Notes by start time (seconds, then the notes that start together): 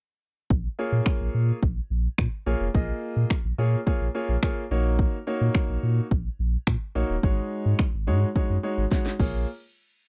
0.50 A#1, kick
0.79 A#3 F4 G#4 C#5
0.92 A#2
1.06 finger snap, kick
1.20 A#1
1.34 A#2
1.63 A#1, kick
1.90 A#1
2.18 A#2, finger snap, kick
2.46 A#1 A#3 F4 G#4 C#5
2.60 F1
2.74 A#1 A#3 F4 G#4 D#5, kick
3.16 A#2
3.30 finger snap, kick
3.44 A#1
3.58 A#2 A#3 F4 G#4 C#5
3.86 A#3 F4 G#4 C#5, kick
4.01 A#1
4.15 A#3 F4 G#4 C#5
4.29 A#1
4.43 A#3 F4 G#4 C#5, finger snap, kick
4.71 A#1 A#3 D#4 F#4 C#5
4.99 kick
5.27 A#3 D#4 F#4 C#5
5.41 A#2
5.55 finger snap, kick
5.69 A#1
5.83 A#2
6.11 A#1, kick
6.39 A#1
6.67 A#2, finger snap, kick
6.95 A#1 A#3 D#4 F#4 C#5
7.09 D#1
7.23 G#1 G#3 D#4 F#4 C#5, kick
7.66 G#2
7.79 finger snap, kick
7.94 G#1
8.07 G#2 G#3 D#4 F#4 C#5
8.36 G#3 D#4 F#4 C#5, kick
8.50 F#2
8.63 G#3 D#4 F#4 C#5
8.78 G#1
8.91 G#3 D#4 F#4 C#5, kick, snare
9.06 snare
9.20 A#1 A#3 F4 G#4 C#5, kick, crash